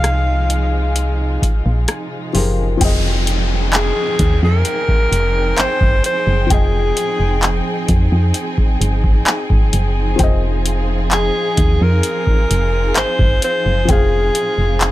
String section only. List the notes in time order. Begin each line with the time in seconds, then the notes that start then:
Already playing: C3 F3 G#3 D#4 F4
2.81 F3 C4 D#4 G#4 G5
10.20 F4